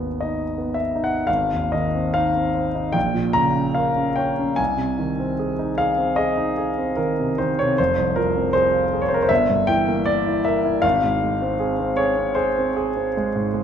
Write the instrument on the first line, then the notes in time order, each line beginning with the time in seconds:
grand piano
Already playing: G#1 D#2 B3 D#4 G#4
0.21 D#4 D#5
0.58 B3
0.74 E5
0.96 D#4
1.04 F#5
1.27 G#1 F5
1.52 D#2
1.72 D#3 D#5
1.95 C4
2.14 D#4 F5
2.36 C4
2.55 C5
2.75 D#4
2.92 A#1 G5
3.14 A#2
3.33 C#3 A#5
3.55 C#4
3.75 A#4 F5
3.97 C#4
4.16 C#5 G5
4.39 C#4
4.56 C2 G#5
4.77 C3
4.99 D#3
5.20 C4
5.39 G#4
5.59 D#4
5.78 G#4 F5
5.98 C4
6.16 G#4 D#5
6.37 D#4
6.57 G#4
6.78 C4
6.96 D#3 A#4
7.19 C3
7.38 D#3 C5
7.59 C3 C#5
7.78 F1 C5
7.97 C2
8.16 F3 A#4
8.37 C4
8.53 G#4 C5
8.73 F4
8.93 G#4
9.02 C#5
9.08 C4 C5
9.14 A#4
9.22 C5
9.29 G1 E5
9.50 G2
9.67 E3 G5
9.88 A#3
10.06 A#4 D5
10.27 E4
10.45 A#4 E5
10.65 E4
10.82 G#1 F5
11.04 G#2
11.23 G#3
11.42 C4
11.60 G#4
11.80 C4
11.97 G#4 C#5
12.17 C4
12.35 G#4 C5
12.58 C4
12.76 G#4
12.96 C4
13.17 G#3
13.36 G#2
13.54 G#3